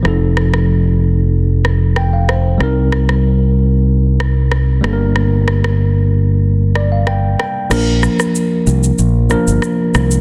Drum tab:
CC |----------------|----------------|----------------|x---------------|
SH |----------------|----------------|----------------|x-xxx-xxx-xxx-xx|
SD |r-rr------r-r-r-|r-rr------r-r-r-|r-rr------r-r-r-|r-rr------r-r-r-|